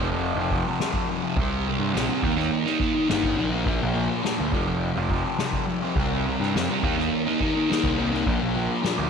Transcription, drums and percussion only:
0.22 ride
0.51 kick, ride
0.79 snare, ride
0.94 kick
1.08 ride
1.37 kick, ride
1.66 ride
1.94 snare, ride
2.22 kick, ride
2.39 snare
2.50 ride
2.66 snare
2.79 kick, ride
3.08 snare, ride
3.23 kick
3.37 ride
3.65 kick, ride
3.94 ride
4.24 snare, ride
4.52 kick, ride
4.80 ride
5.09 kick, ride
5.37 snare, ride
5.53 kick
5.67 ride
5.96 kick, ride
6.26 ride
6.42 snare
6.55 snare, ride
6.83 kick, ride
7.00 snare
7.13 ride
7.40 kick, ride
7.70 snare, ride
7.84 kick
7.98 ride
8.14 snare
8.26 kick, ride
8.56 ride
8.83 snare, ride

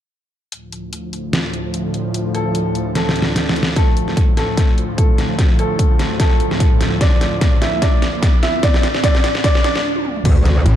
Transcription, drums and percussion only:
0.52 closed hi-hat
0.72 closed hi-hat
0.93 closed hi-hat
1.13 closed hi-hat
1.33 snare, closed hi-hat
1.54 closed hi-hat
1.74 closed hi-hat
1.94 closed hi-hat
2.14 closed hi-hat
2.35 closed hi-hat
2.55 closed hi-hat
2.75 closed hi-hat
2.95 snare, closed hi-hat
3.09 snare
3.16 closed hi-hat
3.22 snare
3.36 snare, closed hi-hat
3.49 snare
3.56 closed hi-hat
3.63 snare
3.76 kick, snare, closed hi-hat
3.97 closed hi-hat
4.08 snare
4.17 kick, closed hi-hat
4.37 snare, closed hi-hat
4.57 kick, snare, closed hi-hat
4.78 closed hi-hat
4.98 kick, closed hi-hat
5.18 snare, closed hi-hat
5.39 kick, snare, closed hi-hat
5.59 closed hi-hat
5.79 kick, closed hi-hat
5.99 snare, closed hi-hat
6.20 kick, snare, closed hi-hat
6.40 closed hi-hat
6.51 snare
6.60 kick, closed hi-hat
6.81 snare, closed hi-hat
7.01 kick, snare, closed hi-hat
7.21 snare, closed hi-hat
7.41 kick, snare, closed hi-hat
7.62 snare, closed hi-hat
7.82 kick, snare, closed hi-hat
8.02 snare, closed hi-hat
8.22 kick, snare, closed hi-hat
8.43 snare, closed hi-hat
8.63 kick, snare, closed hi-hat
8.74 snare
8.83 snare, closed hi-hat
8.95 snare
9.03 kick, snare, closed hi-hat
9.15 snare
9.24 snare, closed hi-hat
9.35 snare
9.44 kick, snare, closed hi-hat
9.55 snare
9.64 snare, closed hi-hat
9.75 snare
9.96 high tom
10.05 mid tom
10.16 mid tom
10.25 kick, closed hi-hat, crash
10.45 snare, closed hi-hat
10.66 closed hi-hat

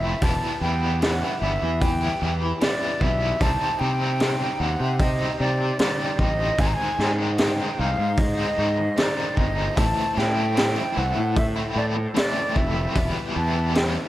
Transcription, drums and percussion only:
0.21 kick, open hi-hat
1.02 snare, open hi-hat
1.81 kick, open hi-hat
2.61 snare, open hi-hat
3.01 kick
3.41 kick, open hi-hat
4.20 snare, open hi-hat
4.99 kick, open hi-hat
5.79 snare, open hi-hat
6.19 kick
6.58 kick, open hi-hat
6.99 snare
7.38 snare, open hi-hat
8.17 kick, open hi-hat
8.97 snare, open hi-hat
9.37 kick
9.77 kick, open hi-hat
10.18 snare
10.57 snare, open hi-hat
11.37 kick, open hi-hat
12.16 snare, open hi-hat
12.56 kick
12.96 kick, open hi-hat
13.75 snare, open hi-hat

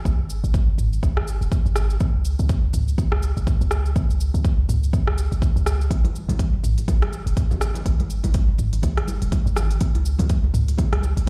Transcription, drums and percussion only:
0.05 kick, shaker
0.30 shaker
0.44 shaker
0.54 kick, shaker
0.78 mid tom, shaker
0.93 shaker
1.03 kick, shaker
1.17 cross-stick
1.27 shaker
1.42 shaker
1.52 kick, shaker
1.66 shaker
1.76 cross-stick, shaker
1.90 shaker
2.00 kick, shaker
2.25 shaker
2.39 shaker
2.49 kick, shaker
2.73 mid tom, shaker
2.88 shaker
2.98 kick, shaker
3.12 cross-stick
3.23 shaker
3.37 shaker
3.47 kick, mid tom, shaker
3.61 shaker
3.71 cross-stick, shaker
3.86 shaker
3.96 kick, shaker
4.10 shaker
4.20 shaker
4.34 shaker
4.45 kick, shaker
4.69 mid tom, shaker
4.83 shaker
4.93 kick, shaker
5.07 cross-stick
5.18 shaker
5.32 shaker
5.42 kick, shaker
5.57 shaker
5.66 cross-stick, shaker
5.81 shaker
5.91 kick, closed hi-hat, shaker
6.04 closed hi-hat, muted conga, high conga
6.16 shaker
6.29 closed hi-hat, muted conga, high conga, low conga, shaker
6.39 kick, closed hi-hat, shaker
6.53 muted conga
6.64 mid tom, shaker
6.78 closed hi-hat, muted conga, shaker
6.88 kick, closed hi-hat, high conga, low conga, shaker
7.02 cross-stick, closed hi-hat
7.13 muted conga, shaker
7.27 closed hi-hat, shaker
7.37 kick, closed hi-hat, mid tom, muted conga, shaker
7.51 high conga, low conga, shaker
7.61 cross-stick, muted conga, shaker
7.74 closed hi-hat, low conga, shaker
7.86 kick, closed hi-hat, shaker
8.00 closed hi-hat, muted conga, high conga
8.10 shaker
8.23 closed hi-hat, muted conga, high conga, low conga, shaker
8.34 kick, closed hi-hat, shaker
8.48 muted conga
8.58 mid tom, shaker
8.73 closed hi-hat, muted conga, shaker
8.82 kick, closed hi-hat, high conga, shaker
8.97 cross-stick, closed hi-hat
9.07 muted conga, high conga, shaker
9.22 closed hi-hat, shaker
9.32 kick, closed hi-hat, muted conga, high conga, shaker
9.47 shaker
9.56 cross-stick, muted conga, high conga, low conga, shaker
9.71 closed hi-hat, shaker
9.81 kick, closed hi-hat, shaker
9.95 closed hi-hat, muted conga, high conga
10.05 shaker
10.18 closed hi-hat, muted conga, high conga, low conga, shaker
10.29 kick, closed hi-hat, shaker
10.44 muted conga
10.54 mid tom, shaker
10.68 closed hi-hat, muted conga, shaker
10.78 kick, closed hi-hat, high conga, low conga, shaker
10.93 cross-stick, closed hi-hat
11.02 muted conga, shaker
11.17 closed hi-hat, shaker

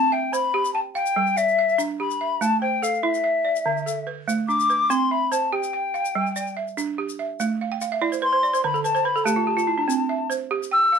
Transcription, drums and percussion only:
0.34 shaker
0.65 shaker
0.96 shaker
1.06 shaker
1.27 shaker
1.37 shaker
1.48 shaker
1.69 shaker
1.79 shaker
2.11 shaker
2.42 shaker
2.84 shaker
2.94 shaker
3.14 shaker
3.56 shaker
3.77 shaker
3.88 shaker
4.29 shaker
4.50 shaker
4.60 shaker
4.70 shaker
4.91 shaker
5.32 shaker
5.63 shaker
5.95 shaker
6.05 shaker
6.26 shaker
6.36 shaker
6.47 shaker
6.68 shaker
6.78 shaker
7.09 shaker
7.40 shaker
7.81 shaker
8.13 shaker
8.44 shaker
8.54 shaker
8.75 shaker
8.85 shaker
8.96 shaker
9.17 shaker
9.27 shaker
9.59 shaker
9.90 shaker
10.31 shaker
10.63 shaker
10.94 shaker

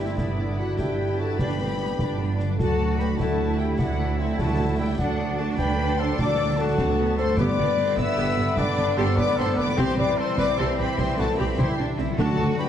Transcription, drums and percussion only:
0.18 concert bass drum, snare
0.79 concert bass drum, snare
1.39 concert bass drum, snare
1.99 concert bass drum, snare
2.39 snare
2.59 concert bass drum, snare
2.99 snare
3.20 concert bass drum, snare
3.79 concert bass drum, snare
4.39 concert bass drum, snare
4.99 concert bass drum, snare
5.59 concert bass drum, snare
6.19 concert bass drum, snare
6.78 concert bass drum, snare
7.17 snare
7.37 concert bass drum, snare, crash
7.77 snare
7.97 concert bass drum, snare
8.57 concert bass drum, snare
9.17 concert bass drum, snare
9.78 concert bass drum, snare
10.38 concert bass drum, snare
10.98 concert bass drum, snare
11.58 concert bass drum, snare
11.98 snare
12.18 concert bass drum, snare
12.59 snare

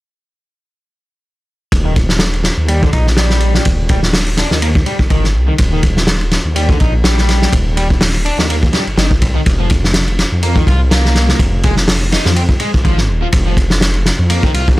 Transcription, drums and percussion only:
1.72 kick, ride
1.96 kick, ride
2.09 snare
2.19 snare, ride
2.33 ride
2.44 snare, ride
2.68 ride
2.83 kick
2.93 kick, ride
3.07 snare
3.17 snare, ride
3.30 snare
3.40 ride
3.54 snare
3.65 kick, ride
3.89 kick, ride
4.03 snare
4.13 snare, open hi-hat
4.26 ride
4.37 snare, ride
4.51 snare
4.62 ride
4.75 kick
4.86 ride
4.99 kick
5.10 kick, ride
5.24 snare
5.58 kick, ride
5.83 kick, ride
5.97 snare
6.07 snare, ride
6.21 ride
6.31 snare, ride
6.56 ride
6.69 kick
6.80 kick, ride
7.04 snare, ride
7.18 snare
7.29 snare, ride
7.42 snare
7.53 kick, ride
7.77 ride
7.90 kick
8.01 snare, open hi-hat
8.14 ride
8.26 ride
8.39 snare
8.50 ride
8.63 kick
8.73 snare, ride
8.87 ride
8.98 snare, ride
9.11 kick
9.22 kick, ride
9.46 kick, ride
9.70 kick, ride
9.84 snare
9.94 snare, ride
10.08 ride
10.19 snare, ride
10.43 ride
10.56 kick
10.67 kick, ride
10.91 snare, ride
11.05 snare
11.15 snare, ride
11.29 snare
11.39 kick, ride
11.63 kick, ride
11.77 snare
11.87 snare, open hi-hat
12.01 ride
12.12 snare, ride
12.25 snare
12.36 ride
12.49 kick
12.60 ride
12.74 kick
12.85 kick, ride
12.98 snare
13.32 kick, ride
13.57 kick, ride
13.70 snare
13.81 snare, ride
13.94 ride
14.06 snare, ride
14.30 ride
14.43 kick
14.54 ride
14.68 kick

